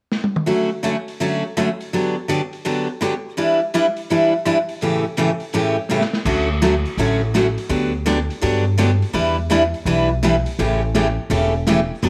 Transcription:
0.12 snare
0.24 high tom
0.36 mid tom
0.46 D3 F#3 A3 C#4 F#4, open hi-hat
0.83 D3 F#3 A3 C#4 F#4, closed hi-hat
1.08 open hi-hat
1.20 D3 F#3 A3 C#4 F#4, open hi-hat
1.57 D3 F#3 A3 C#4 F#4, cross-stick, closed hi-hat
1.80 open hi-hat
1.93 D3 F#3 B3 D4 G4, open hi-hat
2.28 D3 F#3 B3 D4 G4, closed hi-hat
2.53 open hi-hat
2.65 D3 F#3 B3 D4 G4, open hi-hat
3.01 D3 F#3 B3 D4 G4, cross-stick, closed hi-hat
3.37 E3 G3 D4 E4 B4, open hi-hat
3.74 E3 G3 D4 E4 B4, closed hi-hat
3.96 open hi-hat
4.10 E3 G3 D4 E4 B4, open hi-hat
4.45 E3 G3 D4 E4 B4, cross-stick, closed hi-hat
4.69 open hi-hat
4.81 A2 C#3 E3 A3 C#4 G4, open hi-hat
5.17 A2 C#3 E3 A3 C#4 G4, closed hi-hat
5.40 open hi-hat
5.53 A2 C#3 E3 A3 C#4 G4, open hi-hat
5.89 A2 C#3 E3 A3 C#4 G4, high tom
6.01 snare
6.13 snare
6.25 D2 D3 F#3 A3 C#4 F#4, kick, crash
6.62 D3 F#3 A3 C#4 F#4, snare, closed hi-hat
6.85 open hi-hat
6.97 A1 D3 F#3 A3 C#4 F#4, open hi-hat
7.34 D3 F#3 A3 C#4 F#4, snare, closed hi-hat
7.58 open hi-hat
7.69 D2 D3 F#3 B3 D4 G4, open hi-hat
8.06 D3 F#3 B3 D4 G4, snare, closed hi-hat
8.30 open hi-hat
8.41 G2 D3 F#3 B3 D4 G4, open hi-hat
8.78 D3 F#3 B3 D4 G4, snare, closed hi-hat
9.02 open hi-hat
9.13 E2 E3 G3 D4 E4 B4, open hi-hat
9.50 E3 G3 D4 E4 B4, snare, closed hi-hat
9.74 open hi-hat
9.85 B1 E3 G3 D4 E4 B4, open hi-hat
10.23 E3 G3 D4 E4 B4, snare, closed hi-hat
10.46 open hi-hat
10.59 A1 C#3 E3 A3 C#4 G4, open hi-hat
10.95 C#3 E3 A3 C#4 G4, snare, closed hi-hat
11.30 E1 C#3 E3 A3 C#4 G4, open hi-hat
11.67 C#3 E3 A3 C#4 G4, snare, closed hi-hat
12.02 G1 D3 F#3 B3 D4 G4, open hi-hat

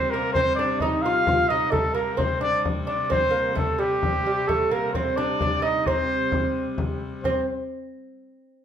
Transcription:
Already playing: C3 G3 C4 C5
0.10 A#3 A#4, frame drum
0.33 C4 C5, frame drum
0.55 D4 D5
0.80 D#4 D#5, frame drum
1.02 F4 F5, frame drum
1.27 F4, frame drum
1.49 D#4 D#5
1.71 C3 G3 A3 A4, frame drum
1.94 A#3 A#4, frame drum
2.17 C4 C5, frame drum
2.41 D4 D5
2.65 frame drum
2.87 D4 D5, frame drum
3.10 C4 C5, frame drum
3.31 A#3
3.35 frame drum
3.55 A3 A4, frame drum
3.79 G3 G4
4.03 frame drum
4.26 G3, frame drum
4.48 A3 A4, frame drum
4.71 A#3 A#4, frame drum
4.93 C4 C5, frame drum
5.16 D4 D5
5.41 D4, frame drum
5.62 D#4 D#5, frame drum
5.86 C4 C5, frame drum
6.32 frame drum
6.78 frame drum
7.23 C4 C5, frame drum

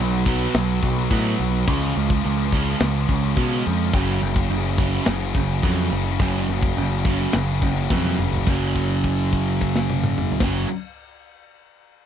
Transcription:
Already playing: B1 B2 F#3
0.03 B2 F#3
0.11 B2 F#3
0.19 B2 F#3
0.26 B2 F#3 B3, kick
0.35 B2 F#3
0.42 B2 F#3
0.50 B2 F#3
0.54 B1 B2, snare, china
0.59 F#3
0.65 B2 F#3
0.73 B2 F#3
0.80 B1 B2 F#3, kick
0.90 B2 F#3
0.97 B2 F#3
1.04 B2 F#3
1.10 A2 B2 F#3 B3, kick, china
1.20 B2 F#3
1.28 B2 F#3
1.35 B2 F#3
1.40 B1 B2
1.44 F#3
1.51 B2 F#3
1.59 B2 F#3
1.67 C#2 C#3 F3 G#3 C#4, kick, china
1.74 C#3 F3
1.83 C#3 F3
1.89 C#3 F3
1.96 C#2 C#3 F3 G#3
2.06 C#3 F3
2.10 C#3, kick
2.15 F3
2.21 C#3 F3 G#3, china
2.25 C#2 C#3
2.31 F3
2.36 C#3 F3
2.45 C#3 F3
2.52 C#3 F3 G#3 C#4, kick
2.61 C#3 F3
2.69 C#3 F3
2.76 C#3 F3
2.80 C#2 C#3 G#3, snare, china
2.85 F3
2.91 C#3 F3
3.00 C#3 F3
3.08 C#2 C#3 F3 G#3, kick
3.15 C#3 F3
3.23 C#3 F3
3.31 C#3 F3
3.37 B2 C#3 F3 G#3 C#4, kick, china
3.47 C#3 F3
3.54 C#3 F3
3.62 C#3 F3
3.67 F2 C#3 G#3
3.71 F3
3.77 C#3 F3
3.85 C#3 F3
3.93 F#1 F#2 C#3 F#3, kick, china
4.00 F#2 C#3
4.10 F#2 C#3
4.17 F#2 C#3
4.22 F#1 F#2 C#3
4.32 F#2 C#3, kick
4.41 F#2 C#3
4.47 F#1 F#2 C#3, china
4.56 F#2 C#3
4.63 F#2 C#3
4.70 F#2 C#3
4.78 F#2 C#3 F#3, kick
4.86 F#2 C#3
4.95 F#2 C#3
5.01 F#2 C#3
5.06 F#1 F#2 C#3, snare, china
5.11 F#2 C#3
5.19 F#2 C#3
5.26 F#2 C#3
5.33 F#1 F#2 C#3, kick
5.41 F#2 C#3
5.49 F#2 C#3
5.57 F#2 C#3
5.63 F2 F#2 C#3 F#3, kick, china
5.72 F#2 C#3
5.79 F#2 C#3
5.88 F#1 F#2 C#3
5.96 F#2 C#3
6.04 F#2 C#3
6.12 F#2 C#3
6.19 F#1 F#2 C#3 F#3, kick, china
6.27 F#2 C#3
6.35 F#2 C#3
6.44 F#2 C#3
6.48 F#1 F#2
6.53 C#3
6.59 F#2 C#3, kick
6.67 F#2 C#3
6.74 F#1 F#2 C#3, china
6.82 F#2 C#3
6.90 F#2 C#3
6.99 F#2 C#3
7.05 F#2 C#3 F#3, kick
7.13 F#2 C#3
7.21 F#2 C#3
7.28 F#2 C#3
7.33 F#1 F#2 C#3, snare, china
7.39 C#3
7.43 F#2 C#3
7.52 F#2 C#3
7.60 F#1 F#2 C#3, kick
7.68 F#2 C#3
7.75 F#2 C#3
7.83 F#2 C#3
7.90 F2 F#2 C#3 F#3, kick, snare
7.99 F#2 C#3
8.04 F#2, high tom
8.09 C#3
8.14 F#2 C#3
8.18 F#1, mid tom
8.23 F#2 C#3
8.30 F#2 C#3, floor tom
8.38 F#2 C#3
8.46 F#1 F#2 C#3, kick, crash
8.51 F#3
8.76 kick, crash
8.90 crash
9.04 kick, crash
9.18 crash
9.33 kick, crash
9.47 crash
9.61 kick, crash
9.76 snare
9.90 high tom
10.03 mid tom
10.18 mid tom
10.32 floor tom
10.40 F#1 F#2 C#3 F#3, kick, snare, crash

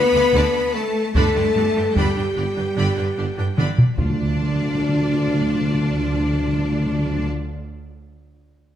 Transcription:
Already playing: B3 B4 B5
0.13 D2 D3 D4 A4 F5
0.33 D2 D3 D4 D5 A5, taiko
0.74 A3 A4 A5
1.14 G1 G2 D3 A3 D4 A4 D5 A5 B5, taiko
1.34 G2 D3 D4 B4 G5
1.55 G1 G2 D3 D4 G4 D5
1.75 G2 D3 D4 B4 G5
1.95 G1 G2 D3 G3 D4 G4 D5 G5 B5, taiko
2.15 G2 D3 D4 B4 G5
2.35 G1 G2 D3 D4 G4 D5
2.55 G2 D3 D4 B4 G5
2.75 G1 G2 D3 D4 D5 B5
2.96 G2 D3 D4 B4 G5
3.17 G1 G2 D3 D4 G4 D5
3.37 G2 D3 D4 B4 G5
3.56 G1 G2 D3 D4 D5 B5, taiko mid
3.78 taiko low-mid
3.97 D2 D3 D4 F4 D5 A5, taiko
4.04 D3
4.10 D3
4.16 D3
4.23 D3
4.29 D3
4.36 D3
4.42 D3
4.49 D3
4.56 D3
4.62 D3
4.68 D3
4.75 D3
4.82 D3
4.89 D3
4.95 D3
5.02 D3
5.08 D3
5.14 D3
5.21 D3
5.28 D3
5.35 D3
5.41 D3
5.47 D3
5.55 D3
5.61 D3
5.67 D3
5.74 D3
5.81 D3
5.88 D3
5.94 D3
6.01 D3
6.08 D3
6.14 D3
6.20 D3
6.27 D3
6.34 D3
6.40 D3
6.47 D3
6.53 D3
6.59 D3
6.65 D3
6.72 D3
6.79 D3
6.86 D3
6.92 D3
6.99 D3
7.05 D3
7.11 D3
7.18 D3
7.24 D3

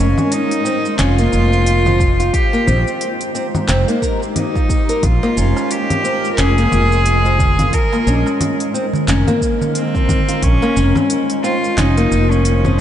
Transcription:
Already playing: F1 G#3 C#4 F4 C5
0.18 low conga, shaker
0.32 D#4, open hi-hat, shaker
0.51 open hi-hat, shaker
0.65 C4, shaker
0.85 shaker
0.99 F1 C#4 F4, clap, open hi-hat, low conga, shaker
1.18 A#3, open hi-hat, shaker
1.32 F1, shaker
1.53 shaker
1.66 open hi-hat, shaker
1.86 F3, low conga, shaker
2.00 kick, shaker
2.20 F4, open hi-hat, shaker
2.33 G#3 D#4 G4, kick, open hi-hat, shaker
2.53 A#3, shaker
2.67 A#1 C4, low conga, shaker
2.88 shaker
3.01 open hi-hat, shaker
3.21 open hi-hat, shaker
3.35 C4, shaker
3.55 low conga, shaker
3.68 F1 C4, clap, open hi-hat, shaker
3.88 A#3, open hi-hat, shaker
4.02 A#4, kick, shaker
4.23 shaker
4.36 D#4, open hi-hat, low conga, shaker
4.55 F4, kick, shaker
4.69 kick, shaker
4.89 A#4, open hi-hat, shaker
5.03 A#1 G#3 F4 A#4, kick, open hi-hat, low conga, shaker
5.23 A#3, darbuka ka, darbuka tek, shaker
5.37 F1 C#4, shaker
5.56 darbuka ka, darbuka tek, shaker
5.71 G4, open hi-hat, shaker
5.90 open hi-hat, low conga, shaker
6.04 C4, darbuka ka, shaker
6.25 shaker
6.32 A#4
6.38 F1 C#4 G#4, clap, open hi-hat, shaker
6.58 A#3, open hi-hat, darbuka ka, shaker
6.72 F1, low conga, shaker
6.92 shaker
7.06 open hi-hat, shaker
7.25 F3, shaker
7.39 kick, darbuka dum, shaker
7.59 F4, open hi-hat, low conga, shaker
7.73 D#4 A#4, kick, open hi-hat, shaker
7.92 A#3, darbuka ka, darbuka tek, shaker
8.07 A#1 C#4, shaker
8.26 darbuka ka, darbuka tek, shaker
8.41 open hi-hat, low conga, shaker
8.60 open hi-hat, shaker
8.74 C4, shaker
8.93 darbuka dum, shaker
9.08 F1 C#4, clap, open hi-hat, shaker
9.27 A#3, open hi-hat, low conga, shaker
9.41 kick, darbuka tek, shaker
9.61 darbuka dum, shaker
9.75 C4, open hi-hat, shaker
9.95 F3, kick, shaker
10.09 kick, darbuka dum, low conga, shaker
10.28 F4, open hi-hat, shaker
10.42 A#1 C#4 F4 C5, kick, open hi-hat, shaker
10.62 A#3, darbuka ka, darbuka tek, shaker
10.76 F1 C#4, shaker
10.95 darbuka ka, darbuka tek, low conga, shaker
11.10 open hi-hat, shaker
11.30 open hi-hat, shaker
11.44 C4 F4, darbuka ka, shaker
11.64 shaker
11.77 F1 C#4 D#4, clap, open hi-hat, low conga, shaker
11.97 A#3, open hi-hat, darbuka ka, shaker
12.11 F1, darbuka ka, shaker
12.31 C#4, shaker
12.45 open hi-hat, shaker
12.65 F3, low conga, shaker

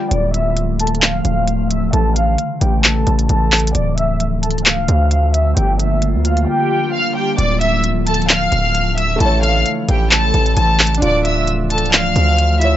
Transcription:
0.11 D1 D3 F3 A3 D5 D6, closed hi-hat
0.34 E5 E6, closed hi-hat
0.57 closed hi-hat
0.79 A4 A5, closed hi-hat
0.87 closed hi-hat
0.95 closed hi-hat
1.02 F5 F6, clap, closed hi-hat
1.25 D1, closed hi-hat
1.48 closed hi-hat
1.71 E5 E6, closed hi-hat
1.93 A1 C#3 E3 A4 A5, closed hi-hat
2.16 F5 F6, closed hi-hat
2.38 closed hi-hat
2.61 A1 G4 G5, closed hi-hat
2.84 A4 A5, clap, closed hi-hat
3.07 A1, closed hi-hat
3.19 closed hi-hat
3.29 A1 A4 A5, closed hi-hat
3.52 clap, closed hi-hat, open hi-hat
3.60 closed hi-hat
3.67 closed hi-hat
3.74 D1 D3 F3 A3 D5 D6, closed hi-hat
3.98 E5 E6, closed hi-hat
4.20 closed hi-hat
4.43 A4 A5, closed hi-hat
4.51 closed hi-hat
4.55 C#1, closed hi-hat
4.66 F5 F6, clap, closed hi-hat
4.88 D2, closed hi-hat
5.11 closed hi-hat
5.34 E5 E6, closed hi-hat
5.56 G1 G3 A#3 F4 G4 G5, closed hi-hat
5.79 E5 E6, closed hi-hat
6.02 closed hi-hat
6.14 D2
6.25 F5 F6, closed hi-hat
6.37 closed hi-hat
6.48 G4 G5
6.93 F5 F6
7.16 G4 G5
7.38 D1 F3 A3 D5 D6, closed hi-hat
7.61 E5 E6, closed hi-hat
7.84 closed hi-hat
8.07 A4 A5, closed hi-hat
8.14 closed hi-hat
8.22 closed hi-hat
8.29 F5 F6, clap, closed hi-hat
8.52 D1, closed hi-hat
8.75 closed hi-hat
8.98 E5 E6, closed hi-hat
9.16 A3
9.20 A1 C#3 E3 E4 A4 A5, closed hi-hat
9.25 C#5
9.43 F5 F6, closed hi-hat
9.66 closed hi-hat
9.88 A1 G4 G5, closed hi-hat
10.11 A4 A5, clap, closed hi-hat
10.34 A1, closed hi-hat
10.46 closed hi-hat
10.57 A1 A4 A5, closed hi-hat
10.79 clap, closed hi-hat, open hi-hat
10.87 closed hi-hat
10.95 D4, closed hi-hat
11.02 D1 D3 F3 F4 D5 D6, closed hi-hat
11.07 D5
11.25 E5 E6, closed hi-hat
11.48 closed hi-hat
11.70 A4 A5, closed hi-hat
11.78 closed hi-hat
11.82 C#1, closed hi-hat
11.93 F5 F6, clap, closed hi-hat
12.16 D2, closed hi-hat
12.38 closed hi-hat
12.59 E4 F4 E5 E6, closed hi-hat
12.64 C#5

